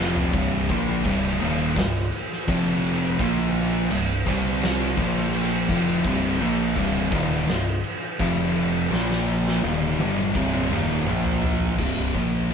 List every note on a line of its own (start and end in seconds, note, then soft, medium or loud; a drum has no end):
0.00 0.32 F1 medium
0.00 0.33 F2 loud
0.00 0.34 C3 loud
0.00 0.34 F3 loud
0.00 snare medium
0.15 floor tom medium
0.33 0.67 C1 medium
0.33 0.69 C2 loud
0.33 0.69 G2 loud
0.33 0.69 C3 loud
0.33 kick loud
0.33 crash medium
0.69 1.03 A#1 loud
0.69 1.05 A#2 loud
0.69 1.05 F3 loud
0.69 1.05 A#3 medium
0.69 kick loud
0.69 crash medium
1.05 1.38 C1 loud
1.05 1.40 C2 medium
1.05 1.40 G2 medium
1.05 1.41 C3 loud
1.05 kick loud
1.05 crash medium
1.40 1.74 D#1 loud
1.40 1.75 D#2 medium
1.40 1.76 A#2 medium
1.40 1.76 D#3 loud
1.40 crash medium
1.76 2.10 C1 medium
1.76 2.05 C2 medium
1.76 2.05 G2 medium
1.76 kick loud
1.76 snare loud
1.76 crash medium
2.12 crash medium
2.33 snare soft
2.48 3.15 F1 medium
2.48 3.18 F2 medium
2.48 3.18 C3 loud
2.48 3.18 F3 medium
2.48 kick loud
2.48 crash medium
2.84 crash medium
3.19 3.87 A#1 medium
3.19 3.89 A#2 loud
3.19 3.90 F3 loud
3.19 3.90 A#3 loud
3.19 kick loud
3.19 crash medium
3.55 crash medium
3.90 4.24 C1 medium
3.90 4.19 C2 medium
3.90 4.19 G2 medium
3.90 crash medium
4.26 4.94 C2 loud
4.26 4.97 C3 medium
4.26 4.97 G3 loud
4.26 4.98 C4 loud
4.26 kick loud
4.26 crash medium
4.61 snare loud
4.61 crash medium
4.98 5.65 A#1 loud
4.98 5.68 A#2 medium
4.98 5.68 F3 medium
4.98 5.69 A#3 medium
4.98 kick loud
4.98 crash medium
5.17 snare soft
5.33 crash medium
5.69 6.02 F1 medium
5.69 6.04 F2 loud
5.69 6.04 C3 loud
5.69 6.04 F3 loud
5.69 kick loud
5.69 crash loud
6.04 6.38 C1 medium
6.04 6.40 C2 loud
6.04 6.40 G2 loud
6.04 6.40 C3 loud
6.04 kick medium
6.04 crash medium
6.40 6.74 A#1 loud
6.40 6.76 A#2 medium
6.40 6.76 F3 loud
6.40 6.76 A#3 loud
6.40 crash medium
6.76 7.10 C1 loud
6.76 7.11 C2 loud
6.76 7.11 G2 medium
6.76 7.12 C3 loud
6.76 kick loud
6.76 crash medium
7.12 7.45 D#1 loud
7.12 7.47 D#2 loud
7.12 7.47 A#2 medium
7.12 7.47 D#3 loud
7.12 kick loud
7.12 crash medium
7.47 7.81 C1 medium
7.47 7.77 C2 medium
7.47 7.77 G2 medium
7.47 snare loud
7.47 crash medium
7.84 crash medium
8.19 8.87 F1 medium
8.19 8.90 F2 loud
8.19 8.90 C3 loud
8.19 8.91 F3 loud
8.19 kick loud
8.19 crash medium
8.55 crash medium
8.91 9.59 A#1 loud
8.91 9.62 A#2 loud
8.91 9.62 F3 loud
8.91 9.62 A#3 loud
8.91 snare medium
9.11 snare medium
9.48 snare medium
9.62 9.96 D#1 medium
9.62 9.98 D#2 medium
9.62 9.98 A#2 medium
9.62 9.98 D#3 loud
9.62 high tom medium
9.98 10.32 G1 loud
9.98 10.33 G2 medium
9.98 10.34 D3 loud
9.98 10.34 G3 loud
9.98 high tom loud
10.18 mid tom medium
10.35 10.68 C1 loud
10.35 10.70 C2 medium
10.35 10.70 G2 medium
10.35 10.71 C3 loud
10.35 kick loud
10.53 mid tom medium
10.71 11.04 D#1 loud
10.71 11.06 D#2 medium
10.71 11.07 A#2 medium
10.71 11.07 D#3 loud
10.71 mid tom loud
11.07 11.75 A#1 loud
11.07 11.78 A#2 medium
11.07 11.78 F3 loud
11.07 11.78 A#3 loud
11.07 mid tom loud
11.24 floor tom medium
11.42 floor tom loud
11.60 floor tom medium
11.78 12.12 C1 loud
11.78 12.14 C2 medium
11.78 12.14 G2 loud
11.78 12.14 C3 loud
11.78 kick loud
11.78 crash medium
12.15 12.48 A#1 medium
12.15 12.50 A#2 medium
12.15 12.50 F3 medium
12.15 12.51 A#3 loud
12.15 kick loud
12.15 ride medium
12.50 12.54 C1 medium
12.50 ride medium